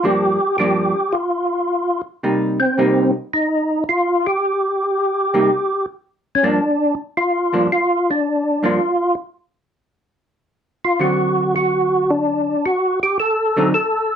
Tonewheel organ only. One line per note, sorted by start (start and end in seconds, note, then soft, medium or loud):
0.05 0.57 G4 loud
0.58 1.15 G4 medium
1.13 2.02 F4 medium
2.60 3.11 C4 medium
3.34 3.84 D#4 medium
3.89 4.27 F4 medium
4.27 5.86 G4 medium
6.35 6.44 C#4 medium
6.44 6.95 D4 loud
7.17 7.67 F4 medium
7.72 8.10 F4 medium
8.11 8.66 D4 medium
8.65 9.15 F4 medium
10.85 11.01 F4 medium
11.01 11.55 F#4 medium
11.56 12.11 F#4 medium
12.10 12.66 D4 medium
12.66 13.00 F#4 medium
13.03 13.18 G4 medium
13.20 13.70 A4 medium
13.74 14.16 A4 medium